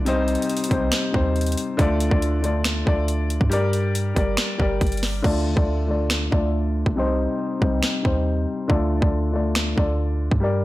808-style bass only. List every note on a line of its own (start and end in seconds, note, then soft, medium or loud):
0.00 0.37 C2 loud
0.71 0.92 C2 loud
1.14 1.56 D#2 loud
1.79 2.10 D2 loud
2.11 2.84 D2 loud
2.87 3.39 D2 loud
3.41 4.13 G2 loud
4.16 4.37 G1 loud
4.60 4.80 G1 loud
4.81 5.23 G1 loud
5.24 5.47 D2 loud
5.46 5.56 D#2 loud
5.57 6.29 D2 loud
6.32 6.84 D2 loud
6.86 7.28 C2 loud
7.62 7.82 C2 loud
8.05 8.46 D#2 loud
8.70 9.01 D2 loud
9.02 9.75 D2 loud
9.78 10.29 D2 loud
10.31 10.65 G2 loud